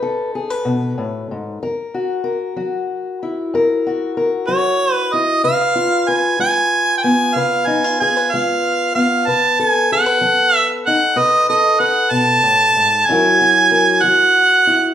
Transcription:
Already playing: B2 D#4 B4
0.02 A4
0.35 G#4
0.50 B4
0.65 B2
0.98 A2
1.31 G#2
1.63 F#2 A#4
1.94 F#4
2.24 A#4
2.56 F#3 F#4
3.23 E4
3.54 F#2 A#4
3.87 F#4
4.17 A#4
4.47 F#3 F#4 C#5
4.93 B4
5.13 E4 D#5
5.44 C#3 B4 F5
5.75 F4
6.08 B4 G#5
6.39 G#3 F4 G#5
6.98 G5
7.03 B3 G#5
7.35 C#3 B4 F5
7.67 D#4 G#5
7.84 F4
8.00 G#4 G#5
8.17 B4
8.32 G#3 F4 F5
8.95 B3 F5
9.27 B2 B4 A5
9.59 A4 G#5
9.92 G#4 F#5
10.06 B4
10.21 F#3 A4
10.57 E5
10.86 D#4 F#5
11.16 B2 B4 D#5
11.49 A4 D#5
11.79 B4 F#5
12.11 B2 A5
12.43 A2
12.76 G#2
13.06 F#2 F#3 E4 G#5
13.11 F#4 A#4
13.41 F#4
13.71 A#4
14.02 F#3 F#4 F#5
14.67 E4

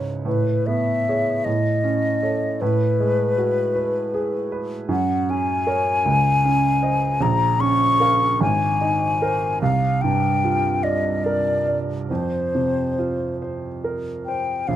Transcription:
Already playing: C#2 G#2 E4 B4 C#5
0.25 A2 B4
0.66 B3 E5
1.09 G#4 C#5
1.44 A2 D#5
1.84 C#4
2.23 A4 C#5
2.61 A2 B4
3.00 G#3
3.38 F#4
3.76 B4
4.14 G#4
4.52 B4
4.89 F#2 F#5
5.30 C#4 G#5
5.67 A#4 C#5
6.05 C#2
6.45 C#4
6.82 C5 D#5
7.21 A#1 A#5
7.59 C#4 C#6
8.00 A#4 F5
8.41 G#1 G#5
8.81 D#4
9.22 A#4 C5
9.62 C2 F5
10.01 G2 G5
10.44 F4
10.83 D5 D#5
11.24 A#4 D5
11.68 D5
12.10 F2 C5
12.55 C3
12.99 F4
13.42 C5
13.84 A#4
14.26 C5 G5
14.68 A#1 F5

